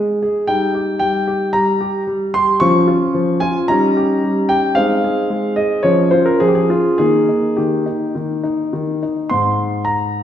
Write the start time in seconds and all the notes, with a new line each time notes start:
Already playing: G#3 D#4
0.22 G#4
0.47 G3 D#4 G5
0.74 G4
0.99 G3 G5
1.27 G4
1.53 G3 A#5
1.80 G4
2.07 G3
2.34 G4 C6
2.60 F3 C#4 F4 C#6
2.88 F4
3.14 F3
3.40 F4 G#5
3.68 G3 C#4 D#4 A#5
3.97 G4
4.24 G3
4.49 G4 G5
4.75 G#3 C4 D#4 F5
5.04 G#4
5.30 G#3
5.56 G#4 D#5
5.83 F3 C#4 C#5
6.11 F4 C5
6.26 A#4
6.40 F3 G#4
6.48 G4
6.55 G#4
6.70 F4
6.98 D#3 A#3 D#4 G#4
7.29 D#4
7.57 D#3 G4
7.86 D#4
8.15 D#3
8.43 D#4
8.73 D#3
9.03 D#4
9.30 G#2 C6
9.85 A#5